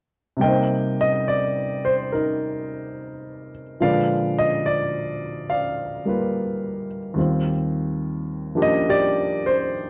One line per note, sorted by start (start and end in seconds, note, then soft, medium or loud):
0.37 3.77 C3 soft
0.37 3.78 G3 soft
0.41 3.80 A#3 soft
0.41 2.13 D#4 soft
0.41 0.99 D#5 medium
0.41 0.96 G5 medium
0.47 1.83 C5 soft
1.01 1.25 D#5 medium
1.28 1.81 D5 medium
1.85 2.09 C5 medium
2.12 3.77 D#4 soft
2.12 3.50 A#4 medium
3.80 7.17 A#2 soft
3.80 7.17 D3 soft
3.80 7.17 F3 soft
3.80 7.17 G#3 soft
3.80 6.07 B4 soft
3.80 4.64 D5 medium
3.80 4.35 F5 medium
4.38 4.62 D#5 medium
4.66 5.50 D5 medium
5.50 7.14 D5 soft
5.50 6.87 F5 medium
6.05 7.15 G3 soft
6.05 7.16 A#3 soft
6.05 7.17 F4 soft
6.05 7.18 B4 soft
7.14 9.90 D#2 soft
7.14 9.90 D#3 soft
7.14 9.90 G3 soft
7.14 9.90 C4 soft
7.19 9.90 F4 soft
8.55 9.90 F3 soft
8.55 9.90 A#3 soft
8.55 9.90 D4 soft
8.55 8.87 G4 soft
8.62 8.85 D#5 medium
8.89 9.90 G4 medium
8.89 9.47 D5 medium
9.46 9.90 C5 medium